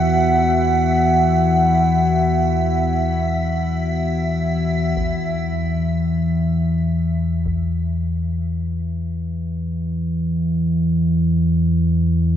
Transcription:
0.00 4.96 E2 medium
0.00 4.96 E3 medium
0.00 4.98 B3 medium
0.00 4.98 F#4 medium
0.00 5.01 E5 medium
0.00 4.99 F#5 loud
4.97 12.37 E2 medium
4.97 12.37 E3 medium
4.97 taiko medium
7.46 taiko medium

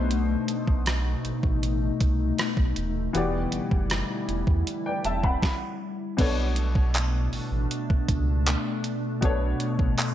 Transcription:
0.00 0.36 B1 loud
0.00 2.72 B2 medium
0.00 3.11 B2 medium
0.00 3.11 A3 medium
0.00 2.72 B3 medium
0.00 2.73 D#4 medium
0.00 3.11 D#4 medium
0.00 2.73 A4 medium
0.00 2.77 C5 medium
0.11 closed hi-hat medium
0.48 closed hi-hat medium
0.68 1.15 B1 loud
0.68 kick medium
0.86 cross-stick loud
0.86 closed hi-hat medium
1.25 1.32 A1 soft
1.25 closed hi-hat medium
1.43 1.91 A1 medium
1.43 kick medium
1.63 closed hi-hat medium
2.01 2.32 C2 medium
2.01 kick medium
2.01 closed hi-hat medium
2.38 cross-stick loud
2.38 closed hi-hat medium
2.57 2.73 B1 medium
2.57 kick medium
2.76 3.08 D#1 medium
2.76 closed hi-hat medium
3.13 3.46 E1 loud
3.13 5.40 D3 medium
3.13 5.38 E3 medium
3.13 5.40 G3 medium
3.13 5.38 B3 medium
3.13 5.40 E4 medium
3.13 5.39 F#4 medium
3.13 5.39 G4 medium
3.13 closed hi-hat medium
3.17 4.65 D5 medium
3.52 3.60 F#1 medium
3.52 closed hi-hat medium
3.71 4.03 F#1 medium
3.71 kick medium
3.90 cross-stick loud
3.90 closed hi-hat medium
4.28 4.44 E1 medium
4.28 closed hi-hat medium
4.47 4.63 E2 medium
4.47 kick medium
4.67 closed hi-hat medium
4.86 5.04 D5 medium
4.86 5.04 G5 medium
5.04 5.36 E1 medium
5.04 5.23 E5 medium
5.04 5.23 A5 medium
5.04 closed hi-hat medium
5.24 5.60 F#5 medium
5.24 5.60 B5 medium
5.24 kick medium
5.43 kick loud
5.43 snare medium
6.17 7.28 B1 loud
6.17 9.17 B2 medium
6.17 10.14 B2 medium
6.17 10.14 A3 medium
6.17 9.18 B3 medium
6.17 10.14 D4 medium
6.17 9.18 D4 medium
6.17 9.19 A4 medium
6.17 kick loud
6.17 closed hi-hat medium
6.17 crash medium
6.21 9.19 C#5 medium
6.56 closed hi-hat medium
6.75 kick medium
6.94 clap loud
6.94 closed hi-hat medium
7.32 7.40 A1 soft
7.32 open hi-hat soft
7.51 7.67 A1 medium
7.71 closed hi-hat medium
7.90 kick medium
8.08 8.56 C#2 loud
8.08 kick loud
8.08 closed hi-hat medium
8.46 clap loud
8.46 closed hi-hat medium
8.84 closed hi-hat medium
9.21 9.54 B1 loud
9.21 10.14 B2 medium
9.21 10.14 B3 medium
9.21 10.14 D4 medium
9.21 10.14 A4 medium
9.21 kick loud
9.21 closed hi-hat medium
9.25 10.14 C#5 medium
9.60 closed hi-hat medium
9.79 9.95 A1 medium
9.79 kick medium
9.98 clap loud
9.98 closed hi-hat medium

